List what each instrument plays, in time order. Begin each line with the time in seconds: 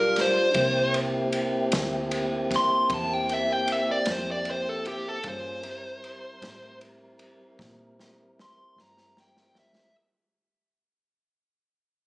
Already playing: fingered electric bass B1, tonewheel organ G3 D4 F4, lead electric guitar A#4
0.16 snare, ride
0.21 lead electric guitar C5
0.54 fingered electric bass C2, tonewheel organ A#3 C4 E4 G4, kick, ride
0.94 ride
1.33 ride
1.72 fingered electric bass D2, snare, ride
2.11 ride
2.51 kick, snare, ride
2.56 lead electric guitar C6
2.90 fingered electric bass E2, kick, ride
2.94 lead electric guitar A5
3.13 lead electric guitar G5
3.29 ride
3.33 lead electric guitar E5
3.52 lead electric guitar G5
3.68 ride
3.72 lead electric guitar E5
3.91 lead electric guitar D5
4.05 fingered electric bass F2, snare, ride
4.12 lead electric guitar C5
4.31 lead electric guitar D5
4.45 ride
4.50 lead electric guitar C5
4.69 lead electric guitar A4
4.85 lead electric guitar G4, ride
5.08 lead electric guitar A4
5.23 fingered electric bass G2, tonewheel organ A#3 C#4 F4 G#4, kick, ride
5.28 lead electric guitar C5
5.62 tonewheel organ G3 C4 E4 A#4, ride
6.04 ride
6.42 fingered electric bass A2, snare, ride
6.81 ride
7.19 ride
7.59 fingered electric bass A#2, kick, snare
8.00 snare
8.39 lead electric guitar C6, snare
8.76 fingered electric bass G2, snare
8.81 lead electric guitar A#5
8.97 snare
9.17 lead electric guitar G5, snare
9.37 snare
9.55 lead electric guitar E5, snare
9.75 snare